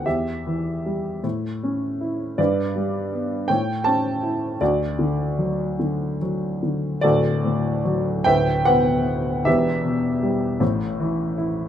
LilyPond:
<<
  \new Staff \with { instrumentName = "Grand piano" } { \time 6/8 \key d \major \tempo 4. = 52 << { e''4. r4. | d''4. g''8 a''4 | d''2 r4 | d''4 r8 g''8 fis''4 |
e''4. r4. | } \\ { g'4. r4. | b'4. cis''4. | fis'2 r4 | <fis' a'>4. <b' e''>8 b'4 |
<g' b'>4. r4. | } >> }
  \new Staff \with { instrumentName = "Grand piano" } { \clef bass \time 6/8 \key d \major e,8 e8 g8 a,8 cis'8 e'8 | g,8 g8 b8 a,8 cis'8 e'8 | d,8 d8 fis8 d8 fis8 d8 | <d,, d,>8 a,8 fis8 <d,, d,>8 b,8 b8 |
<e,, e,>8 b,8 g8 <a,, a,>8 e8 e'8 | }
>>